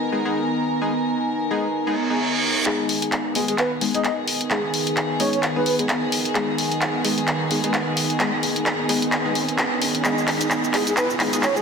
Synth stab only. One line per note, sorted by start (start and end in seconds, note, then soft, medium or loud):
0.12 0.23 G#3 medium
0.12 0.23 B3 medium
0.12 0.23 D#4 medium
0.12 0.23 G#4 medium
0.25 0.40 G#3 medium
0.25 0.40 B3 medium
0.25 0.40 D#4 medium
0.25 0.40 G#4 loud
0.81 0.93 G#3 medium
0.81 0.93 B3 medium
0.81 0.93 D#4 medium
0.81 0.93 G#4 medium
1.51 1.67 G#3 medium
1.51 1.67 B3 medium
1.51 1.67 D#4 medium
1.51 1.67 G#4 loud
1.87 1.95 G#3 loud
1.87 1.95 B3 medium
1.87 1.95 D#4 medium
1.87 1.95 G#4 loud
2.10 2.18 G#3 medium
2.10 2.18 B3 medium
2.10 2.18 D#4 medium
2.10 2.18 G#4 medium
2.66 3.33 G#3 loud
2.66 3.33 B3 medium
2.66 3.33 D#4 medium
2.66 3.33 G#4 loud
3.35 3.52 G#3 medium
3.35 3.52 B3 medium
3.35 3.52 D#4 medium
3.35 3.52 G#4 medium
3.81 3.93 G#3 medium
3.81 3.93 B3 medium
3.81 3.93 D#4 medium
3.81 3.93 G#4 medium
3.95 4.09 G#3 medium
3.95 4.09 B3 medium
3.95 4.09 D#4 medium
3.95 4.09 G#4 loud
4.51 4.62 G#3 medium
4.51 4.62 B3 medium
4.51 4.62 D#4 medium
4.51 4.62 G#4 medium
5.20 5.37 G#3 loud
5.20 5.37 B3 medium
5.20 5.37 D#4 medium
5.20 5.37 G#4 loud
5.56 5.65 G#3 loud
5.56 5.65 B3 medium
5.56 5.65 D#4 medium
5.56 5.65 G#4 loud
5.79 5.88 G#3 medium
5.79 5.88 B3 medium
5.79 5.88 D#4 medium
5.79 5.88 G#4 medium
6.35 7.02 G#3 loud
6.35 7.02 B3 medium
6.35 7.02 D#4 medium
6.35 7.02 G#4 loud
7.05 7.21 G#3 medium
7.05 7.21 B3 medium
7.05 7.21 D#4 medium
7.05 7.21 G#4 medium
7.51 7.62 G#3 medium
7.51 7.62 B3 medium
7.51 7.62 D#4 medium
7.51 7.62 G#4 medium
7.64 7.78 G#3 loud
7.64 7.78 B3 medium
7.64 7.78 D#4 medium
7.64 7.78 G#4 loud
8.20 8.31 G#3 medium
8.20 8.31 B3 medium
8.20 8.31 D#4 medium
8.20 8.31 G#4 medium
8.89 9.06 G#3 loud
8.89 9.06 B3 medium
8.89 9.06 D#4 medium
8.89 9.06 G#4 loud
9.25 9.34 G#3 loud
9.25 9.34 B3 medium
9.25 9.34 D#4 medium
9.25 9.34 G#4 loud
10.05 10.71 G#3 loud
10.05 10.71 B3 medium
10.05 10.71 D#4 medium
10.05 10.71 G#4 loud
10.74 10.90 G#3 medium
10.74 10.90 B3 medium
10.74 10.90 D#4 medium
10.74 10.90 G#4 medium
11.20 11.31 G#3 medium
11.20 11.31 B3 medium
11.20 11.31 D#4 medium
11.20 11.31 G#4 medium
11.33 11.48 G#3 loud
11.33 11.48 B3 medium
11.33 11.48 D#4 medium
11.33 11.48 G#4 loud